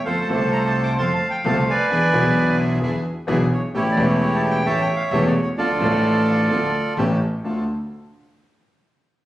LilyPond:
<<
  \new Staff \with { instrumentName = "Bandoneon" } { \time 4/4 \key d \minor \tempo 4 = 130 << { \tuplet 3/2 { f''8 a''8 a''8 bes''8 a''8 d'''8 c'''8 a''8 g''8 } a''8 gis''8~ | gis''4. r2 cis''8 | \tuplet 3/2 { cis''8 d''8 cis''8 cis''8 a''8 g''8 a''8 g''8 f''8 e''8 d''8 cis''8 } | d''2. r4 |
r1 | } \\ { <a' c''>2 <f'' a''>4. <b' d''>8~ | <b' d''>4. r2 r8 | <e' g'>2 <cis'' e''>2 | <f' a'>2. r4 |
r1 | } >> }
  \new Staff \with { instrumentName = "Bandoneon" } { \time 4/4 \key d \minor <c' f' a'>8 <c' f' a'>4. <c' f' a'>8 r8 <c' f' a'>8 r8 | <d' e' gis'>8 <d' e' gis'>4. <d' e' gis'>8 r8 <d' e' gis'>8 r8 | <cis' g' a'>8 <cis' g' a'>4. <cis' g' a'>8 r8 <cis' g' a'>8 r8 | <d' f' a'>8 <d' f' a'>4. <d' f' a'>8 r8 <cis' g' a'>8 r8 |
<d' f' a'>8 r2. r8 | }
  \new Staff \with { instrumentName = "Grand piano" } { \time 4/4 \key d \minor <f, f a c' a'>8 <c, c f a c' a'>4. <f, f a c' a'>8 r8 <c, c f a c' a'>8 r8 | <e, e b d' gis'>8 <b,, b, e b d' gis'>4. <e, e b d' gis'>8 r8 <b,, b, e b d' gis'>8 r8 | <a,, a, e a cis' g'>8 <e,, e, e a cis' g'>4. <a,, a, e a cis' g'>8 r8 <e,, e, e a cis' g'>8 r8 | <d, d f a d' a'>8 <a,, a, f a d' a'>4. <d, d f a d' a'>8 r8 <a,, a, e a cis' g'>8 r8 |
<d, a d' f'>8 r2. r8 | }
  \new Staff \with { instrumentName = "Upright bass" } { \clef bass \time 4/4 \key d \minor f,8 c,4. f,8 r8 c,8 r8 | e,8 b,,4. e,8 r8 b,,8 r8 | a,,8 e,,4. a,,8 r8 e,,8 r8 | d,8 a,,4. d,8 r8 a,,8 r8 |
d,8 r2. r8 | }
>>